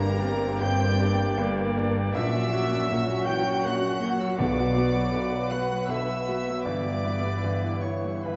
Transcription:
Already playing: G1 G2 G3 A#3 D4 G4 A#4 D5 G5 A#5
0.19 A#3 C4 D4 G4
0.60 G1 G2 G4 G5 G6
1.00 A#3 D4 G4
1.37 G1 G2 A#3 A#4
1.77 A#3 D4 G4
2.14 A#1 A#2 E3 F#3 C#4 F#4 E5 F#5 E6
2.35 F#3
2.52 F#3 A#3 C#4 F#4
2.72 C#4
2.90 A#1 A#2 A#3 C#5
3.08 F#3
3.26 E3 F#3 C#4 F#4 G5 G6
3.46 F#3
3.64 A#1 A#2 A#3 F#5 F#6
3.82 C#4
4.01 F#3 A#3 C#4 F#4 G6
4.12 F#6
4.20 F#3 E6
4.30 F#6
4.38 B1 B2 D3 B3 B4 D5 D6
4.59 F#3
4.77 F#3 B3 F#4
4.94 F#3
5.13 B1 B2 D3
5.34 F#3
5.51 F#3 B3 F#4 F#5 F#6
5.72 F#3
5.88 B1 B2 D3 E5 E6
6.11 F#3
6.29 F#3 B3 F#4
6.48 F#3
6.64 G1 G2 E3 B4 D5 E5 D6
6.87 G3
7.04 B3 E4
7.24 G3
7.44 G1 G2 E3 E4
7.63 G3
7.82 B3 E4 C#5 C#6
8.05 G3
8.24 G1 G2 E3 B4 E5 B5

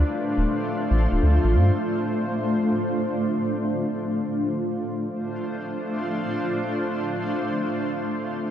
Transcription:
Already playing: A3 D4 F4 C5
0.37 D1
0.90 A1
1.12 D1
1.22 D2
1.44 A1
1.54 G2
1.75 D4
5.16 A3 D4 F4 C5

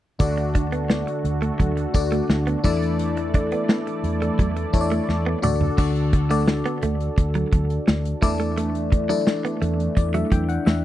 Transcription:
0.19 D2 D3 A3 D4 F#4 A4 D5, kick, closed hi-hat
0.38 muted clean electric guitar stroke, closed hi-hat
0.55 D4, kick, closed hi-hat
0.72 B3, closed hi-hat
0.90 B3, snare
1.07 muted clean electric guitar stroke, closed hi-hat
1.24 D2, closed hi-hat
1.42 A3, closed hi-hat
1.60 D2 F#3, kick, closed hi-hat
1.77 muted clean electric guitar stroke, closed hi-hat
1.94 D2 D4 F#4 A4 D5, kick, closed hi-hat
2.12 A3, closed hi-hat
2.29 D2, muted clean electric guitar stroke, snare
2.47 B3, closed hi-hat
2.64 E2 E3 A3 D4 E4 A4 D5, kick, closed hi-hat
2.82 closed hi-hat
2.99 closed hi-hat
3.17 muted clean electric guitar stroke, closed hi-hat
3.34 D4, kick, closed hi-hat
3.52 B3, closed hi-hat
3.69 B3, snare
3.87 muted clean electric guitar stroke, closed hi-hat
4.03 E2, closed hi-hat
4.22 A3, closed hi-hat
4.39 E2 F#3, kick, closed hi-hat
4.57 muted clean electric guitar stroke, closed hi-hat
4.73 E2 D4 E4 A4 C#5, kick, closed hi-hat
4.81 D5
4.91 A3, closed hi-hat
5.09 E2, muted clean electric guitar stroke, snare
5.26 B3
5.42 D2 D3 A3 D4 F#4 A4 D5, mid tom
5.61 floor tom
5.78 D2 D3 D4 F#4 A4 D5, kick, crash
5.96 closed hi-hat
6.13 muted clean electric guitar stroke, kick, closed hi-hat
6.30 A3 D4 F#4 A4 D5, closed hi-hat
6.47 muted clean electric guitar stroke, snare
6.66 B3, closed hi-hat
6.82 D2 A3, closed hi-hat
7.00 closed hi-hat
7.18 D2, muted clean electric guitar stroke, kick, closed hi-hat
7.35 F#3, closed hi-hat
7.52 D2 F#3, kick, closed hi-hat
7.70 closed hi-hat
7.87 D2, muted clean electric guitar stroke, snare
8.05 closed hi-hat
8.22 E2 E3 A3 D4 E4 A4 D5, kick, closed hi-hat
8.40 A3, closed hi-hat
8.57 A3, closed hi-hat
8.75 closed hi-hat
8.92 muted clean electric guitar stroke, kick, closed hi-hat
9.09 F#3 D4 E4 A4 D5, closed hi-hat
9.27 muted clean electric guitar stroke, snare
9.45 B3, closed hi-hat
9.62 E2 A3, closed hi-hat
9.80 closed hi-hat
9.97 E2 D5, muted clean electric guitar stroke, kick, closed hi-hat
10.14 F#3 E5, closed hi-hat
10.32 E2 F#3 G5, kick, closed hi-hat
10.49 F#5, closed hi-hat
10.66 E2 E5, muted clean electric guitar stroke, snare

